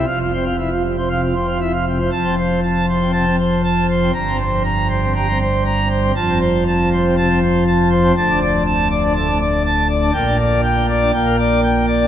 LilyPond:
<<
  \new Staff \with { instrumentName = "Pipe organ" } { \time 4/4 \key f \major \tempo 4 = 120 << { f''16 f'16 c''16 f'16 e'16 f'16 c16 c''16 f''16 f'16 c''16 f'16 e'16 f'16 c16 c''16 | a''8 c''8 a''8 c''8 a''8 c''8 a''8 c''8 | bes''8 c''8 bes''8 c''8 bes''8 c''8 bes''8 c''8 | a''8 c''8 a''8 c''8 a''8 c''8 a''8 c''8 |
a''8 d''8 a''8 d''8 a''8 d''8 a''8 d''8 | g''8 d''8 g''8 d''8 g''8 d''8 g''8 d''8 | } \\ { f,8 c'8 r4 c8 c'8 r4 | f,16 c'16 r4 r16 c'16 c16 c'16 r4 r16 c'16 | g,16 c'16 r4 r16 c'16 g16 c'16 r4 r16 c'16 | f,16 c'16 r4 r16 c'16 c16 c'16 r4 r16 c'16 |
d,16 d'16 r4 r16 d'16 a,16 d'16 r4 r16 d'16 | bes,16 d'16 r4 r16 d'16 bes,16 bes16 r4 r16 d'16 | } >> }
  \new Staff \with { instrumentName = "Pipe organ" } { \clef bass \time 4/4 \key f \major f,,1 | f,,1 | g,,1 | f,,1 |
d,,1 | bes,,2 bes,,2 | }
>>